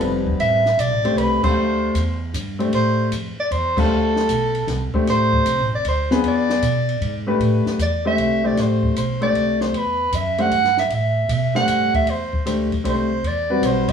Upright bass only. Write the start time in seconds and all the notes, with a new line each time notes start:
0.00 F1
0.38 A1
0.77 B1
0.90 A1
1.03 F1
1.16 C2
1.43 muted upright bass stroke
1.56 D2
1.94 E2
2.34 G2
2.73 A2
3.12 F2
3.38 muted upright bass stroke
3.51 E2
3.90 D2
4.29 B1
4.67 C2
4.94 muted upright bass stroke
5.07 A1
5.46 C2
5.60 A1
5.72 F1
5.85 D2
6.23 E2
6.62 B2
7.01 G#2
7.40 A2
7.66 muted upright bass stroke
7.79 E2
8.17 C2
8.56 A1
8.95 B1
9.33 C2
9.72 E2
10.12 F#2
10.51 G2
10.90 A2
11.29 B2
11.68 G2
11.94 muted upright bass stroke
12.06 E2
12.45 D2
12.84 C2
13.23 E2
13.62 B1